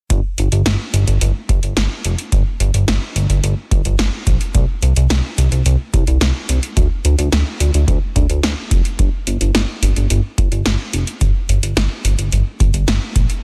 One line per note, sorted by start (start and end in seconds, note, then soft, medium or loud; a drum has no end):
0.10 0.21 G1 loud
0.10 kick loud
0.10 closed hi-hat medium
0.38 0.49 G1 medium
0.38 closed hi-hat medium
0.52 0.63 G1 medium
0.52 closed hi-hat soft
0.66 0.76 G1 loud
0.66 snare loud
0.66 closed hi-hat medium
0.93 1.04 G1 medium
0.93 closed hi-hat medium
1.07 1.18 G1 medium
1.07 closed hi-hat soft
1.21 1.32 G1 loud
1.21 closed hi-hat medium
1.49 1.60 G1 loud
1.49 kick medium
1.49 closed hi-hat medium
1.63 1.74 G1 medium
1.63 closed hi-hat medium
1.77 1.88 G1 loud
1.77 snare loud
1.77 closed hi-hat medium
2.05 2.15 F1 loud
2.05 closed hi-hat medium
2.18 closed hi-hat medium
2.32 2.43 G1 loud
2.32 kick loud
2.32 closed hi-hat medium
2.60 2.71 G1 loud
2.60 closed hi-hat medium
2.74 2.85 G1 medium
2.74 closed hi-hat medium
2.88 2.99 G1 loud
2.88 snare loud
2.88 closed hi-hat medium
3.16 3.26 G1 loud
3.16 closed hi-hat medium
3.30 3.40 G1 medium
3.30 closed hi-hat soft
3.43 3.54 G1 loud
3.43 closed hi-hat medium
3.71 3.82 G1 loud
3.71 kick medium
3.71 closed hi-hat medium
3.85 3.96 G1 medium
3.85 closed hi-hat soft
3.99 4.10 G1 loud
3.99 snare loud
3.99 closed hi-hat medium
4.27 4.37 A#1 medium
4.27 kick medium
4.27 closed hi-hat medium
4.41 closed hi-hat medium
4.55 4.65 C2 loud
4.55 kick loud
4.55 closed hi-hat medium
4.82 4.93 C2 medium
4.82 closed hi-hat medium
4.96 5.07 C2 loud
4.96 closed hi-hat medium
5.10 5.21 C2 loud
5.10 snare loud
5.10 closed hi-hat medium
5.38 5.49 C2 medium
5.38 closed hi-hat medium
5.52 5.63 C2 medium
5.52 closed hi-hat soft
5.66 5.76 C2 loud
5.66 closed hi-hat medium
5.94 6.04 C2 loud
5.94 kick medium
5.94 closed hi-hat medium
6.07 6.18 C2 loud
6.07 closed hi-hat medium
6.21 6.32 C2 loud
6.21 snare loud
6.21 closed hi-hat medium
6.49 6.60 C2 loud
6.49 closed hi-hat medium
6.63 closed hi-hat medium
6.77 6.88 D2 loud
6.77 kick loud
6.77 closed hi-hat medium
7.05 7.15 D2 loud
7.05 closed hi-hat medium
7.18 7.29 D2 loud
7.18 closed hi-hat medium
7.32 7.43 D2 loud
7.32 snare loud
7.32 closed hi-hat medium
7.60 7.71 D2 medium
7.60 closed hi-hat medium
7.74 7.85 D2 medium
7.74 closed hi-hat soft
7.88 7.99 D2 loud
7.88 kick medium
7.88 closed hi-hat medium
8.16 8.26 D2 loud
8.16 kick medium
8.16 closed hi-hat medium
8.30 8.40 D2 loud
8.30 closed hi-hat medium
8.43 8.54 D2 loud
8.43 snare loud
8.43 closed hi-hat medium
8.71 8.82 F1 medium
8.71 kick medium
8.71 closed hi-hat medium
8.85 closed hi-hat medium
8.99 9.10 G1 loud
8.99 kick loud
8.99 closed hi-hat medium
9.27 9.38 G1 medium
9.27 closed hi-hat medium
9.41 9.51 G1 medium
9.41 closed hi-hat medium
9.55 9.65 G1 loud
9.55 snare loud
9.55 closed hi-hat medium
9.82 9.93 G1 medium
9.82 closed hi-hat medium
9.96 10.07 G1 medium
9.96 closed hi-hat soft
10.10 10.21 G1 loud
10.10 closed hi-hat medium
10.38 10.49 G1 loud
10.38 kick medium
10.38 closed hi-hat medium
10.52 10.63 G1 medium
10.52 closed hi-hat soft
10.66 10.76 G1 loud
10.66 snare loud
10.66 closed hi-hat medium
10.93 11.04 F1 loud
10.93 closed hi-hat medium
11.07 closed hi-hat medium
11.21 11.32 G1 loud
11.21 kick loud
11.21 closed hi-hat medium
11.49 11.60 G1 loud
11.49 closed hi-hat medium
11.63 11.74 G1 medium
11.63 closed hi-hat medium
11.77 11.88 G1 loud
11.77 snare loud
11.77 closed hi-hat medium
12.05 12.15 G1 medium
12.05 closed hi-hat medium
12.18 12.29 G1 medium
12.18 closed hi-hat soft
12.32 12.43 G1 loud
12.32 closed hi-hat medium
12.60 12.71 G1 loud
12.60 kick medium
12.60 closed hi-hat medium
12.74 12.85 G1 loud
12.74 closed hi-hat soft
12.88 12.99 G1 loud
12.88 snare loud
12.88 closed hi-hat medium
13.16 13.26 A#1 medium
13.16 kick loud
13.16 closed hi-hat medium
13.30 closed hi-hat medium